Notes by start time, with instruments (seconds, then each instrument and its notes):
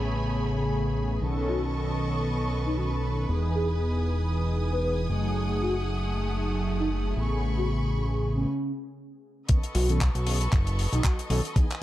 Already playing: analog synth bass A1, analog polysynth C#3 A3 B3 G#4, violin section A3 C#5 G#5 B5
1.21 analog synth bass B1, analog polysynth D#3 B3 C#4 A4, violin section B4 D#5 A5 C#6
1.48 soft synth lead F#4
2.66 soft synth lead D#4
2.77 soft synth lead F#4
3.29 analog synth bass E1, analog polysynth E3 B3 D#4 G#4, violin section G#5 D#6
3.55 soft synth lead G#4
4.73 soft synth lead B4
4.84 soft synth lead B4
5.09 analog synth bass F#1, analog polysynth F#3 A3 D#4 G#4, violin section A3 F#5
5.62 soft synth lead F#4
6.80 soft synth lead D#4
7.16 analog synth bass A1, analog polysynth C#3 A3 B3 G#4, violin section B5 C#6
7.57 soft synth lead F#4
8.35 soft synth lead C#4
9.49 analog polysynth D#3 B3 C#4 A4, violin section B3 A4 D#5 C#6, kick, closed hi-hat
9.63 closed hi-hat
9.75 analog synth bass B1, soft synth lead F#4, open hi-hat
9.89 analog polysynth D#3 B3 C#4 A4, closed hi-hat
10.01 kick, clap, closed hi-hat
10.15 analog synth bass B1, closed hi-hat
10.26 analog polysynth D#3 B3 C#4 G#4, open hi-hat
10.41 closed hi-hat
10.52 analog synth bass F#1, kick, clap, closed hi-hat
10.67 closed hi-hat
10.79 open hi-hat
10.93 analog synth bass B1, soft synth lead D#4, closed hi-hat
11.04 soft synth lead F#4, kick, clap, closed hi-hat
11.19 closed hi-hat
11.30 analog synth bass B1, analog polysynth D#3 B3 C#4 A4, open hi-hat
11.45 closed hi-hat
11.56 analog polysynth E3 B3 D#4 G#4, violin section B4 G#5, kick, closed hi-hat
11.70 clap, closed hi-hat